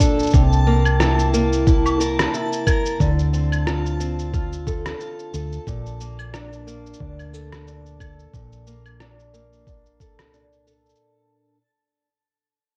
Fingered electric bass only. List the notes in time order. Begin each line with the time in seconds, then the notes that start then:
Already playing: C2
0.34 C2
3.00 D2
5.34 D2
5.67 A#1
7.00 D2
8.34 A#1
10.19 C2